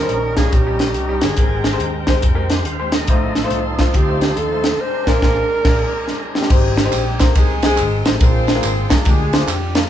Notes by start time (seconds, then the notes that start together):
Already playing: D#3 G3 C#4 D#4 A#4 C#5 D#5 G5 A#5
0.02 G3 C#4 D#4 C5
0.09 A#1, closed hi-hat
0.36 G3 C#4 D#4 F4 G#4, kick, snare, closed hi-hat
0.52 A#1 G4, kick, closed hi-hat
0.67 G3 C#4 D#4 G4
0.79 snare, closed hi-hat
0.94 C2, closed hi-hat
1.09 G3 C#4 D#4 G4
1.21 G1 G#4, snare, closed hi-hat
1.36 G#1 G#2 G#3 C4 G4 G#4 A#4 C5 G5, kick, closed hi-hat
1.64 snare, closed hi-hat
1.73 G#3 C4 G4 C5
1.80 D#2, closed hi-hat
2.07 G#3 C4 G4 C5, kick, snare, closed hi-hat
2.22 F2, kick, closed hi-hat
2.35 G#3 C4 G4 A#4
2.49 G4 C5, snare, closed hi-hat
2.65 D#2 C5 F5, closed hi-hat
2.79 G#3 C4 G4 C5
2.92 A#4 D#5, snare, closed hi-hat
3.07 A1 A2 F3 A3 C4 D#4 F4 G4 C5 D#5 F5 A5 C6, kick, closed hi-hat
3.12 A4
3.35 snare, closed hi-hat
3.44 A3 D#4 F4 C5
3.50 C2, closed hi-hat
3.79 A3 D#4 F4 C5, kick, snare, closed hi-hat
3.94 D2 G4, kick, closed hi-hat
4.09 A3 D#4 F4 C5
4.21 snare, closed hi-hat
4.37 D#2 A4, closed hi-hat
4.51 A3 D#4 F4 C5
4.64 snare, closed hi-hat
4.78 G#3 C4 D4 A#4 C5 D5 G#5 A#5
5.07 A#1 A#3 D4 G#4 A#4 C5, kick, snare, crash
5.22 A#1 A#3 D4 G#4 C5, kick, snare
5.65 A#1 A#3 D4 G#4 D5, kick, snare, crash
6.08 snare
6.35 G3 G4, snare
6.43 snare
6.50 G#1 G#2 G3 G#3 C4 D#4 G4 C5, kick, crash, tambourine
6.77 snare, ride, tambourine
6.85 G#3 C4 D#4 G4 C5
6.92 A#1, clap, ride, tambourine
7.19 G#3 A#3 C4 D#4 G4 A#4 C5, kick, snare, clap, ride, tambourine
7.35 C2 G#3 C4 D#4 G4 G#4 A#4, kick, ride, tambourine
7.62 G#3 C4 D#4 G4 G#4 D#5, snare, ride, tambourine
7.77 G#1, clap, ride, tambourine
8.05 A1 G#3 C4 D#4 G4 C5, snare, ride, tambourine
8.20 A#1 A#2 G#3 A#3 C4 D4 F4 G#4 A#4 C5, kick, ride, tambourine
8.47 snare, ride, tambourine
8.55 G#3 A#3 D4 F4 A#4
8.63 G#1, clap, ride, tambourine
8.89 C2 G#3 A#3 D4 F4 G#4 A#4, kick, snare, clap, ride, tambourine
9.05 D2 G#3 A#3 D4 F4 G4 G#4, kick, ride, tambourine
9.33 G#3 A#3 D4 F4 G#4 C5, snare, ride, tambourine
9.47 F2 G3 G4, clap, ride, tambourine
9.75 F3 G#3 A#3 D4 F4 A#4, snare, ride, tambourine